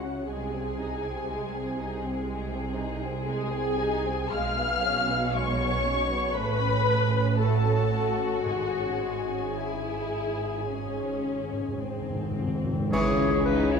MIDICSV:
0, 0, Header, 1, 14, 480
1, 0, Start_track
1, 0, Key_signature, 4, "minor"
1, 0, Tempo, 991736
1, 146, Time_signature, 4, 2, 24, 8
1, 1584, Tempo, 1061947
1, 2064, Tempo, 1016949
1, 3504, Tempo, 1077199
1, 3984, Tempo, 1111111
1, 5904, Tempo, 1054482
1, 6309, End_track
2, 0, Start_track
2, 0, Title_t, "Oboe"
2, 0, Program_c, 0, 68
2, 5916, Note_on_c, 0, 85, 83
2, 6099, Note_off_c, 0, 85, 0
2, 6309, End_track
3, 0, Start_track
3, 0, Title_t, "Violin section"
3, 0, Program_c, 1, 48
3, 0, Note_on_c, 1, 78, 68
3, 136, Note_off_c, 1, 78, 0
3, 144, Note_on_c, 1, 80, 72
3, 1343, Note_off_c, 1, 80, 0
3, 1588, Note_on_c, 1, 80, 100
3, 2048, Note_off_c, 1, 80, 0
3, 2059, Note_on_c, 1, 89, 106
3, 2541, Note_off_c, 1, 89, 0
3, 2541, Note_on_c, 1, 85, 103
3, 3010, Note_on_c, 1, 83, 107
3, 3014, Note_off_c, 1, 85, 0
3, 3499, Note_on_c, 1, 81, 101
3, 3503, Note_off_c, 1, 83, 0
3, 3972, Note_off_c, 1, 81, 0
3, 3979, Note_on_c, 1, 80, 80
3, 5651, Note_off_c, 1, 80, 0
3, 5904, Note_on_c, 1, 64, 87
3, 6309, Note_off_c, 1, 64, 0
3, 6309, End_track
4, 0, Start_track
4, 0, Title_t, "Clarinet"
4, 0, Program_c, 2, 71
4, 5911, Note_on_c, 2, 68, 110
4, 6133, Note_off_c, 2, 68, 0
4, 6153, Note_on_c, 2, 71, 105
4, 6265, Note_on_c, 2, 73, 104
4, 6272, Note_off_c, 2, 71, 0
4, 6309, Note_off_c, 2, 73, 0
4, 6309, End_track
5, 0, Start_track
5, 0, Title_t, "Flute section"
5, 0, Program_c, 3, 73
5, 5916, Note_on_c, 3, 68, 87
5, 6135, Note_off_c, 3, 68, 0
5, 6159, Note_on_c, 3, 71, 86
5, 6269, Note_on_c, 3, 73, 79
5, 6273, Note_off_c, 3, 71, 0
5, 6309, Note_off_c, 3, 73, 0
5, 6309, End_track
6, 0, Start_track
6, 0, Title_t, "Viola section"
6, 0, Program_c, 4, 48
6, 0, Note_on_c, 4, 66, 66
6, 134, Note_on_c, 4, 68, 62
6, 144, Note_off_c, 4, 66, 0
6, 1318, Note_off_c, 4, 68, 0
6, 1583, Note_on_c, 4, 68, 88
6, 2046, Note_off_c, 4, 68, 0
6, 2060, Note_on_c, 4, 77, 80
6, 2539, Note_on_c, 4, 73, 98
6, 2542, Note_off_c, 4, 77, 0
6, 3013, Note_off_c, 4, 73, 0
6, 3018, Note_on_c, 4, 71, 104
6, 3506, Note_off_c, 4, 71, 0
6, 3507, Note_on_c, 4, 69, 88
6, 3976, Note_off_c, 4, 69, 0
6, 3993, Note_on_c, 4, 68, 67
6, 5675, Note_off_c, 4, 68, 0
6, 6309, End_track
7, 0, Start_track
7, 0, Title_t, "Violin section"
7, 0, Program_c, 5, 48
7, 0, Note_on_c, 5, 64, 46
7, 20, Note_on_c, 5, 61, 45
7, 127, Note_off_c, 5, 64, 0
7, 144, Note_off_c, 5, 61, 0
7, 148, Note_on_c, 5, 68, 55
7, 150, Note_on_c, 5, 56, 55
7, 261, Note_off_c, 5, 56, 0
7, 262, Note_on_c, 5, 60, 47
7, 385, Note_on_c, 5, 63, 55
7, 386, Note_off_c, 5, 60, 0
7, 506, Note_on_c, 5, 60, 49
7, 507, Note_off_c, 5, 63, 0
7, 620, Note_on_c, 5, 56, 57
7, 627, Note_off_c, 5, 60, 0
7, 741, Note_on_c, 5, 60, 49
7, 744, Note_off_c, 5, 56, 0
7, 864, Note_off_c, 5, 60, 0
7, 864, Note_on_c, 5, 63, 53
7, 984, Note_off_c, 5, 63, 0
7, 990, Note_on_c, 5, 60, 51
7, 1104, Note_on_c, 5, 56, 61
7, 1107, Note_off_c, 5, 60, 0
7, 1215, Note_off_c, 5, 56, 0
7, 1218, Note_on_c, 5, 60, 60
7, 1334, Note_on_c, 5, 63, 56
7, 1341, Note_off_c, 5, 60, 0
7, 1458, Note_on_c, 5, 60, 60
7, 1459, Note_off_c, 5, 63, 0
7, 1574, Note_on_c, 5, 56, 72
7, 1582, Note_off_c, 5, 60, 0
7, 1691, Note_on_c, 5, 60, 59
7, 1696, Note_off_c, 5, 56, 0
7, 1815, Note_on_c, 5, 63, 69
7, 1818, Note_off_c, 5, 60, 0
7, 1936, Note_on_c, 5, 60, 61
7, 1941, Note_off_c, 5, 63, 0
7, 2051, Note_on_c, 5, 56, 67
7, 2060, Note_off_c, 5, 60, 0
7, 2171, Note_off_c, 5, 56, 0
7, 2175, Note_on_c, 5, 59, 67
7, 2301, Note_off_c, 5, 59, 0
7, 2302, Note_on_c, 5, 61, 69
7, 2422, Note_on_c, 5, 59, 61
7, 2423, Note_off_c, 5, 61, 0
7, 2541, Note_on_c, 5, 56, 67
7, 2543, Note_off_c, 5, 59, 0
7, 2652, Note_on_c, 5, 59, 67
7, 2661, Note_off_c, 5, 56, 0
7, 2769, Note_on_c, 5, 61, 72
7, 2775, Note_off_c, 5, 59, 0
7, 2892, Note_off_c, 5, 61, 0
7, 2897, Note_on_c, 5, 59, 64
7, 3006, Note_on_c, 5, 57, 78
7, 3015, Note_off_c, 5, 59, 0
7, 3122, Note_off_c, 5, 57, 0
7, 3125, Note_on_c, 5, 61, 69
7, 3252, Note_off_c, 5, 61, 0
7, 3252, Note_on_c, 5, 57, 58
7, 3370, Note_on_c, 5, 61, 66
7, 3378, Note_off_c, 5, 57, 0
7, 3487, Note_off_c, 5, 68, 0
7, 3496, Note_on_c, 5, 57, 69
7, 3497, Note_on_c, 5, 66, 81
7, 3500, Note_off_c, 5, 61, 0
7, 3619, Note_on_c, 5, 61, 58
7, 3620, Note_off_c, 5, 57, 0
7, 3740, Note_on_c, 5, 57, 62
7, 3741, Note_off_c, 5, 61, 0
7, 3855, Note_on_c, 5, 61, 54
7, 3862, Note_off_c, 5, 57, 0
7, 3972, Note_on_c, 5, 56, 54
7, 3981, Note_off_c, 5, 61, 0
7, 4088, Note_off_c, 5, 56, 0
7, 4094, Note_on_c, 5, 61, 53
7, 4214, Note_on_c, 5, 56, 59
7, 4217, Note_off_c, 5, 61, 0
7, 4335, Note_on_c, 5, 61, 50
7, 4338, Note_off_c, 5, 56, 0
7, 4453, Note_on_c, 5, 64, 73
7, 4458, Note_off_c, 5, 66, 0
7, 4459, Note_off_c, 5, 61, 0
7, 4924, Note_off_c, 5, 64, 0
7, 4942, Note_on_c, 5, 61, 76
7, 5428, Note_off_c, 5, 61, 0
7, 5431, Note_on_c, 5, 60, 61
7, 5907, Note_off_c, 5, 60, 0
7, 5914, Note_on_c, 5, 61, 92
7, 6134, Note_off_c, 5, 61, 0
7, 6161, Note_on_c, 5, 63, 96
7, 6271, Note_off_c, 5, 63, 0
7, 6273, Note_on_c, 5, 64, 90
7, 6309, Note_off_c, 5, 64, 0
7, 6309, End_track
8, 0, Start_track
8, 0, Title_t, "French horn section"
8, 0, Program_c, 6, 60
8, 5921, Note_on_c, 6, 56, 89
8, 5922, Note_on_c, 6, 61, 92
8, 6309, Note_off_c, 6, 56, 0
8, 6309, Note_off_c, 6, 61, 0
8, 6309, End_track
9, 0, Start_track
9, 0, Title_t, "Trombone section"
9, 0, Program_c, 7, 61
9, 5904, Note_on_c, 7, 52, 88
9, 5906, Note_on_c, 7, 56, 80
9, 6309, Note_off_c, 7, 52, 0
9, 6309, Note_off_c, 7, 56, 0
9, 6309, End_track
10, 0, Start_track
10, 0, Title_t, "Bassoon"
10, 0, Program_c, 8, 70
10, 5914, Note_on_c, 8, 52, 80
10, 6098, Note_off_c, 8, 52, 0
10, 6309, End_track
11, 0, Start_track
11, 0, Title_t, "Cello section"
11, 0, Program_c, 10, 48
11, 0, Note_on_c, 10, 49, 50
11, 129, Note_off_c, 10, 49, 0
11, 146, Note_on_c, 10, 48, 58
11, 2047, Note_off_c, 10, 48, 0
11, 2066, Note_on_c, 10, 47, 73
11, 3016, Note_off_c, 10, 47, 0
11, 3017, Note_on_c, 10, 45, 74
11, 3981, Note_on_c, 10, 44, 62
11, 3986, Note_off_c, 10, 45, 0
11, 5798, Note_off_c, 10, 44, 0
11, 5912, Note_on_c, 10, 49, 93
11, 6309, Note_off_c, 10, 49, 0
11, 6309, End_track
12, 0, Start_track
12, 0, Title_t, "Timpani"
12, 0, Program_c, 11, 47
12, 3983, Note_on_c, 11, 44, 80
12, 4686, Note_off_c, 11, 44, 0
12, 4943, Note_on_c, 11, 44, 37
12, 4972, Note_off_c, 11, 44, 0
12, 4977, Note_on_c, 11, 44, 35
12, 5010, Note_off_c, 11, 44, 0
12, 5015, Note_on_c, 11, 44, 37
12, 5047, Note_off_c, 11, 44, 0
12, 5052, Note_on_c, 11, 44, 38
12, 5083, Note_off_c, 11, 44, 0
12, 5088, Note_on_c, 11, 44, 36
12, 5120, Note_off_c, 11, 44, 0
12, 5127, Note_on_c, 11, 44, 31
12, 5152, Note_off_c, 11, 44, 0
12, 5157, Note_on_c, 11, 44, 36
12, 5190, Note_off_c, 11, 44, 0
12, 5198, Note_on_c, 11, 44, 43
12, 5222, Note_off_c, 11, 44, 0
12, 5227, Note_on_c, 11, 44, 47
12, 5260, Note_off_c, 11, 44, 0
12, 5266, Note_on_c, 11, 44, 49
12, 5297, Note_off_c, 11, 44, 0
12, 5304, Note_on_c, 11, 44, 51
12, 5333, Note_off_c, 11, 44, 0
12, 5338, Note_on_c, 11, 44, 54
12, 5368, Note_off_c, 11, 44, 0
12, 5375, Note_on_c, 11, 44, 57
12, 5402, Note_off_c, 11, 44, 0
12, 5407, Note_on_c, 11, 44, 51
12, 5437, Note_off_c, 11, 44, 0
12, 5443, Note_on_c, 11, 44, 52
12, 5473, Note_off_c, 11, 44, 0
12, 5482, Note_on_c, 11, 44, 57
12, 5510, Note_off_c, 11, 44, 0
12, 5518, Note_on_c, 11, 44, 61
12, 5546, Note_off_c, 11, 44, 0
12, 5554, Note_on_c, 11, 44, 70
12, 5574, Note_off_c, 11, 44, 0
12, 5579, Note_on_c, 11, 44, 71
12, 5607, Note_off_c, 11, 44, 0
12, 5612, Note_on_c, 11, 44, 73
12, 5641, Note_off_c, 11, 44, 0
12, 5646, Note_on_c, 11, 44, 76
12, 5676, Note_off_c, 11, 44, 0
12, 5681, Note_on_c, 11, 44, 82
12, 5711, Note_off_c, 11, 44, 0
12, 5716, Note_on_c, 11, 44, 80
12, 5742, Note_off_c, 11, 44, 0
12, 5747, Note_on_c, 11, 44, 74
12, 5781, Note_off_c, 11, 44, 0
12, 5788, Note_on_c, 11, 44, 86
12, 5819, Note_off_c, 11, 44, 0
12, 5826, Note_on_c, 11, 44, 90
12, 5850, Note_off_c, 11, 44, 0
12, 5855, Note_on_c, 11, 44, 91
12, 5886, Note_off_c, 11, 44, 0
12, 5903, Note_on_c, 11, 49, 113
12, 6309, Note_off_c, 11, 49, 0
12, 6309, End_track
13, 0, Start_track
13, 0, Title_t, "Double bass section"
13, 0, Program_c, 12, 48
13, 0, Note_on_c, 12, 37, 55
13, 128, Note_off_c, 12, 37, 0
13, 143, Note_on_c, 12, 36, 66
13, 2045, Note_off_c, 12, 36, 0
13, 2065, Note_on_c, 12, 35, 81
13, 3014, Note_on_c, 12, 33, 74
13, 3015, Note_off_c, 12, 35, 0
13, 3984, Note_off_c, 12, 33, 0
13, 3988, Note_on_c, 12, 32, 65
13, 5801, Note_off_c, 12, 32, 0
13, 5913, Note_on_c, 12, 37, 93
13, 6309, Note_off_c, 12, 37, 0
13, 6309, End_track
14, 0, Start_track
14, 0, Title_t, "Drums"
14, 5915, Note_on_c, 9, 35, 79
14, 5915, Note_on_c, 9, 49, 81
14, 5961, Note_off_c, 9, 35, 0
14, 5961, Note_off_c, 9, 49, 0
14, 6309, End_track
0, 0, End_of_file